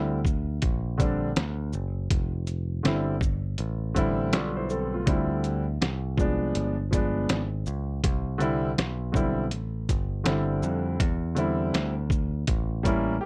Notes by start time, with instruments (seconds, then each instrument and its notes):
Already playing: picked electric bass D2, grand piano D3 G3 C4 E4
0.25 kick, shaker
0.62 picked electric bass A#1, kick, closed hi-hat
0.98 grand piano D3 G3 C4 D4, kick, closed hi-hat, shaker
1.36 picked electric bass D2, snare, closed hi-hat
1.73 picked electric bass F#1, shaker
2.10 picked electric bass F1, kick, closed hi-hat
2.47 closed hi-hat, shaker
2.83 picked electric bass G1, grand piano D3 G3 C4 E4, snare, closed hi-hat
3.21 kick, shaker
3.58 picked electric bass A1, closed hi-hat
3.95 grand piano D3 G3 C4 E4, kick, closed hi-hat, shaker
4.33 picked electric bass B1, grand piano F4 D5, snare, closed hi-hat
4.56 grand piano E4 C5
4.70 grand piano C4 A4, shaker
4.94 grand piano A3 F4
5.06 picked electric bass D2, grand piano D3 G3 C4 E4, kick, closed hi-hat
5.44 closed hi-hat, shaker
5.81 picked electric bass C2, snare, closed hi-hat
6.17 grand piano F3 G#3 B3 D4, kick, shaker
6.55 picked electric bass G1, closed hi-hat
6.91 grand piano F3 G#3 B3 D4, kick, closed hi-hat, shaker
7.29 picked electric bass G#1, snare, closed hi-hat
7.66 picked electric bass C#2, shaker
8.04 picked electric bass C2, kick, closed hi-hat
8.38 grand piano D3 G3 C4 E4, closed hi-hat, shaker
8.78 picked electric bass B1, snare, closed hi-hat
9.12 grand piano D3 G3 C4, kick, shaker
9.16 grand piano E4
9.51 picked electric bass A1, closed hi-hat
9.89 picked electric bass G1, kick, closed hi-hat, shaker
10.24 picked electric bass G1, grand piano D3 G3 C4 E4, snare, closed hi-hat
10.63 picked electric bass F2, shaker
11.00 picked electric bass E2, kick, closed hi-hat
11.35 grand piano D3 G3 C4 E4, closed hi-hat, shaker
11.74 picked electric bass D2, snare, closed hi-hat
12.10 kick, shaker
12.47 picked electric bass A1, kick, closed hi-hat
12.83 grand piano G3 A#3 C#4 E4, kick, closed hi-hat, shaker
13.21 grand piano G4